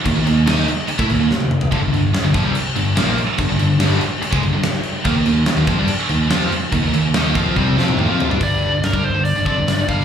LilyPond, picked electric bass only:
\new Staff \with { instrumentName = "Picked electric bass" } { \clef bass \time 4/4 \key g \minor \tempo 4 = 144 ees,16 ees,16 ees,8 ees,8 r8. a,16 ees,16 ees,16 r4 | g,,16 g,,16 g,,8 r16 g,,16 bes,,16 c,16 r8 g,,8 bes,,8 r8 | g,,16 g,,16 g,,8 g,,8 r8. cis,16 g,,16 g,,16 r4 | ees,16 ees,16 ees,8 r16 ees,16 f,16 g,16 r8 ees,8 f,8 r8 |
ees,16 ees,16 ees,8 ees,8 f,8 c,8 f,8 ees,16 f,8 g,16 | g,,8. g,,16 g,,16 g,16 g,,16 g,,8 g,,16 f,16 g,,16 g,,16 g,,16 g,,8 | }